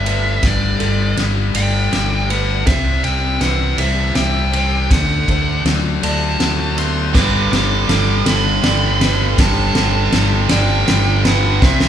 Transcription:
Already playing: fingered electric bass G1, clean electric guitar G3 G4, lead electric guitar E5
0.04 overdriven electric guitar G2 D3 G3, clean electric guitar A3, felt piano B4, ride
0.43 fingered electric bass G1, overdriven electric guitar G2 D3 G3, clean electric guitar G3, lead electric guitar D5, kick, snare, ride
0.79 fingered electric bass G1, overdriven electric guitar G2 D3 G3, felt piano A4, ride
1.16 fingered electric bass G1, overdriven electric guitar G2 D3 G3, clean electric guitar G3, snare, ride
1.54 fingered electric bass G1, overdriven electric guitar G2 D3 G3, clean electric guitar A3, felt piano D5, lead electric guitar G5, ride
1.91 fingered electric bass G1, overdriven electric guitar G2 D3 G3, clean electric guitar G4, snare, ride
2.28 overdriven electric guitar G2 D3 G3, clean electric guitar A3, felt piano B4, lead electric guitar F#5, ride
2.66 fingered electric bass C2, overdriven electric guitar C3 G3 C4, clean electric guitar C3, felt piano C5, lead electric guitar E5, kick, snare, ride
3.03 fingered electric bass C2, overdriven electric guitar C3 G3 C4, lead electric guitar G5, ride
3.40 fingered electric bass C2, overdriven electric guitar C3 G3 C4, clean electric guitar E3, felt piano B4, lead electric guitar F#5, snare, ride
3.78 fingered electric bass C2, overdriven electric guitar C3 G3 C4, clean electric guitar G3, felt piano C5, lead electric guitar E5, ride
4.15 fingered electric bass C2, overdriven electric guitar C3 G3 C4, clean electric guitar G4, felt piano E5, lead electric guitar G5, snare, ride
4.53 overdriven electric guitar C3 G3 C4, clean electric guitar G3, felt piano C5, ride
4.90 fingered electric bass D2, overdriven electric guitar D3 A3 D4, clean electric guitar D3, lead electric guitar F#5, kick, snare, ride
5.28 fingered electric bass D2, overdriven electric guitar D3 A3 D4, felt piano C5, kick, ride
5.65 fingered electric bass D2, overdriven electric guitar D3 A3 D4, clean electric guitar F#3, snare, ride
6.02 fingered electric bass D2, overdriven electric guitar D3 A3 D4, clean electric guitar A3, felt piano D5, lead electric guitar A5, ride
6.39 fingered electric bass D2, overdriven electric guitar D3 A3 D4, clean electric guitar F#4, snare, ride
6.76 overdriven electric guitar D3 A3 D4, clean electric guitar A3, felt piano B3, lead electric guitar C6, ride
7.13 fingered electric bass G1, overdriven electric guitar G2 D3 G3, clean electric guitar G3, felt piano B4, lead electric guitar D6, kick, snare, crash
7.51 fingered electric bass G1, overdriven electric guitar G2 D3 G3, lead electric guitar D6, snare, ride
7.88 fingered electric bass G1, overdriven electric guitar G2 D3 G3, clean electric guitar G3, felt piano A4, snare, ride
8.25 fingered electric bass G1, overdriven electric guitar G2 D3 G3, clean electric guitar A3, felt piano A4, lead electric guitar B5, snare, ride
8.62 fingered electric bass G1, overdriven electric guitar G2 D3 G3, clean electric guitar G4, felt piano D5, snare, ride
9.00 overdriven electric guitar G2 D3 G3, clean electric guitar A3, felt piano B4, snare, ride
9.36 fingered electric bass G1, overdriven electric guitar G2 D3 G3, clean electric guitar G3, kick, snare, ride
9.41 lead electric guitar A5
9.75 fingered electric bass G1, overdriven electric guitar G2 D3 G3, felt piano A4, snare, ride
10.12 fingered electric bass G1, overdriven electric guitar G2 D3 G3, clean electric guitar G3, snare, ride
10.49 fingered electric bass G1, overdriven electric guitar G2 D3 G3, clean electric guitar A3, felt piano D5, lead electric guitar G5, snare, ride
10.87 fingered electric bass G1, overdriven electric guitar G2 D3 G3, clean electric guitar G4, snare, ride
11.24 overdriven electric guitar G2 D3 G3, clean electric guitar A3, felt piano B4, lead electric guitar F#5, snare, ride
11.61 fingered electric bass C2, overdriven electric guitar C3 G3 C4, clean electric guitar C3, felt piano C5, lead electric guitar E5, kick, snare
11.80 snare

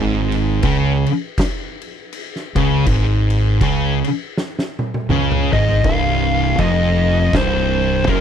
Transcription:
Already playing: fingered electric bass G#1, distorted electric guitar G#2
0.32 crash
0.63 fingered electric bass C#2, distorted electric guitar C#3, kick, crash
1.06 crash
1.38 kick, snare, crash
1.82 crash
2.13 crash
2.36 snare
2.55 fingered electric bass C#2, distorted electric guitar C#3, kick, crash
2.86 fingered electric bass G#1, distorted electric guitar G#2, kick, crash
3.30 crash
3.61 fingered electric bass C#2, distorted electric guitar C#3, kick, crash
4.04 crash
4.37 snare
4.59 snare
4.79 high tom
4.94 high tom
5.09 fingered electric bass C#2, distorted electric guitar C#3, mid tom
5.32 mid tom
5.52 fingered electric bass G#1, distorted electric guitar G#2, lead electric guitar D#5, floor tom
5.69 floor tom
5.84 fingered electric bass C1, distorted electric guitar C2, lead electric guitar F5, kick, crash
6.58 fingered electric bass F1, distorted electric guitar F2, lead electric guitar D#5, kick, crash
7.33 fingered electric bass C1, distorted electric guitar C2, lead electric guitar C5, kick, snare, crash
8.07 fingered electric bass F#1, distorted electric guitar F#2, lead electric guitar A#4, kick, crash

